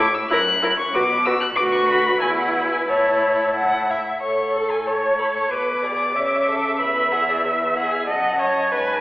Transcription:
0.00 0.23 A2 medium
0.00 0.16 D6 loud
0.14 0.30 E6 medium
0.30 0.87 F#2 medium
0.30 0.39 E4 medium
0.30 0.40 A#4 medium
0.30 0.78 F#6 loud
0.62 0.70 E4 medium
0.62 0.71 A#4 medium
0.79 0.95 C#6 medium
0.94 1.50 B2 medium
0.94 1.03 F#4 medium
0.94 1.02 B4 medium
0.94 1.27 D6 loud
1.25 1.34 F#4 medium
1.25 1.33 B4 medium
1.25 1.40 E6 loud
1.41 1.48 F#6 medium
1.55 2.19 D2 medium
1.55 2.19 F#4 medium
1.55 2.19 B4 medium
1.55 1.62 D6 loud
1.73 1.88 C#6 medium
1.88 2.20 B5 loud
2.21 2.88 E2 medium
2.21 2.87 E4 medium
2.21 2.90 B4 medium
2.21 2.28 G#5 medium
2.38 2.71 F#5 medium
2.72 2.79 G#5 medium
2.87 3.99 A2 medium
2.87 3.99 E4 medium
2.87 3.49 C#5 medium
2.87 3.86 A5 medium
3.57 3.92 F#5 medium
3.90 4.22 E5 medium
4.22 5.47 A2 medium
4.22 4.88 A4 soft
4.22 4.58 C#5 soft
4.22 4.72 C#6 medium
4.56 4.89 A4 soft
4.70 4.88 G#5 medium
4.87 5.53 C#5 medium
4.87 5.20 C#5 soft
4.87 5.18 A5 medium
5.18 5.49 A4 soft
5.18 5.25 B5 medium
5.35 5.53 C#6 medium
5.49 6.16 B2 soft
5.49 5.84 B4 soft
5.49 5.83 B4 medium
5.49 6.80 D6 medium
5.82 6.15 G#4 soft
5.82 6.17 D5 medium
6.15 6.82 C#3 medium
6.15 6.49 C#5 soft
6.15 8.07 E5 medium
6.48 6.79 A4 soft
6.80 8.09 E2 medium
6.80 7.14 B4 soft
6.80 7.13 B5 medium
7.12 7.47 G#4 soft
7.12 7.30 F#5 medium
7.29 7.46 D5 medium
7.44 7.77 B4 soft
7.44 7.75 E5 medium
7.76 8.07 G#4 medium
7.76 7.93 F#5 medium
7.92 8.08 G#5 medium
8.07 8.74 F#2 medium
8.07 8.39 D#5 medium
8.07 8.41 F#5 soft
8.07 9.01 A5 medium
8.40 8.73 C#5 medium
8.40 8.72 D#5 soft
8.72 9.01 G#2 medium
8.72 9.01 B4 medium
8.72 9.01 G#5 soft

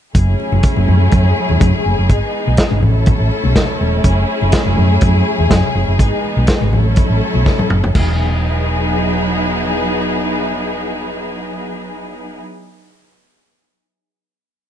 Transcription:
0.14 0.33 F#1 loud
0.14 2.07 F#3 medium
0.14 2.07 A3 medium
0.14 2.07 C#4 medium
0.14 2.07 E4 medium
0.14 2.80 G#4 medium
0.14 kick medium
0.14 closed hi-hat medium
0.14 muted conga soft
0.40 muted conga soft
0.52 0.61 F#1 medium
0.52 high conga medium
0.63 kick loud
0.63 closed hi-hat medium
0.63 muted conga soft
0.76 0.85 F#1 medium
0.76 high conga medium
0.88 1.07 F#2 medium
0.88 muted conga soft
0.88 low conga medium
1.11 1.31 F#2 medium
1.11 kick loud
1.11 closed hi-hat medium
1.11 muted conga soft
1.11 low conga medium
1.36 muted conga soft
1.49 1.59 E2 medium
1.49 high conga medium
1.60 1.71 F#2 medium
1.60 kick loud
1.60 closed hi-hat medium
1.60 muted conga soft
1.60 high conga medium
1.86 1.95 F#1 medium
1.99 2.10 F#1 medium
2.09 2.20 G#1 medium
2.09 2.81 E3 medium
2.09 2.82 G#3 medium
2.09 2.81 B3 medium
2.09 2.81 D#4 medium
2.09 kick medium
2.09 closed hi-hat medium
2.47 2.56 B1 medium
2.47 high conga medium
2.57 kick loud
2.57 snare loud
2.57 closed hi-hat medium
2.71 2.80 G#1 medium
2.71 high conga medium
2.82 3.11 A1 medium
2.82 4.03 F#3 medium
2.82 5.96 A3 medium
2.82 5.96 C#4 medium
2.82 5.96 E4 medium
2.82 4.03 A4 medium
2.82 muted conga soft
2.82 low conga medium
3.06 kick loud
3.06 closed hi-hat medium
3.06 muted conga soft
3.06 low conga medium
3.20 3.29 A1 medium
3.31 muted conga soft
3.44 3.53 B1 medium
3.44 high conga medium
3.56 kick loud
3.56 snare medium
3.56 closed hi-hat medium
3.56 muted conga soft
3.56 high conga medium
3.81 3.99 E1 medium
4.04 4.23 F#1 loud
4.04 5.98 F#3 medium
4.04 6.70 G#4 medium
4.04 kick loud
4.04 closed hi-hat medium
4.04 muted conga soft
4.42 4.51 F#1 medium
4.42 high conga medium
4.52 kick loud
4.52 snare loud
4.52 closed hi-hat medium
4.65 4.75 F#1 medium
4.65 high conga medium
4.77 4.96 F#2 medium
4.77 low conga medium
5.01 5.21 F#2 loud
5.01 kick loud
5.01 closed hi-hat medium
5.01 muted conga soft
5.01 low conga medium
5.38 5.48 E2 medium
5.38 high conga medium
5.50 5.61 F#2 loud
5.50 kick loud
5.50 snare loud
5.50 closed hi-hat medium
5.50 muted conga soft
5.50 high conga medium
5.75 5.85 F#1 medium
5.75 muted conga soft
5.88 6.00 F#1 medium
5.99 6.09 G#1 medium
5.99 6.72 E3 medium
5.99 6.72 G#3 medium
5.99 6.72 B3 medium
5.99 6.72 D#4 medium
5.99 kick medium
5.99 closed hi-hat medium
6.24 muted conga soft
6.37 6.46 B1 medium
6.37 high conga soft
6.47 kick loud
6.47 snare loud
6.47 closed hi-hat medium
6.61 6.70 G#1 medium
6.61 high conga medium
6.73 7.01 A1 medium
6.73 7.94 F#3 medium
6.73 7.94 A3 medium
6.73 7.94 C#4 medium
6.73 7.94 E4 medium
6.73 7.94 A4 medium
6.73 muted conga soft
6.73 low conga medium
6.96 kick loud
6.96 closed hi-hat medium
6.96 low conga medium
7.10 7.19 A1 medium
7.21 muted conga soft
7.34 7.44 B1 medium
7.34 high conga medium
7.46 kick loud
7.46 snare soft
7.46 muted conga soft
7.46 high conga medium
7.59 high tom medium
7.59 low conga medium
7.70 7.90 F#1 medium
7.70 mid tom medium
7.84 floor tom medium
7.95 12.40 E1 medium
7.95 12.41 F#3 medium
7.95 12.41 B3 medium
7.95 12.41 D#4 medium
7.95 12.41 E4 medium
7.95 12.41 G#4 medium
7.95 kick medium
7.95 crash medium
7.95 high conga medium

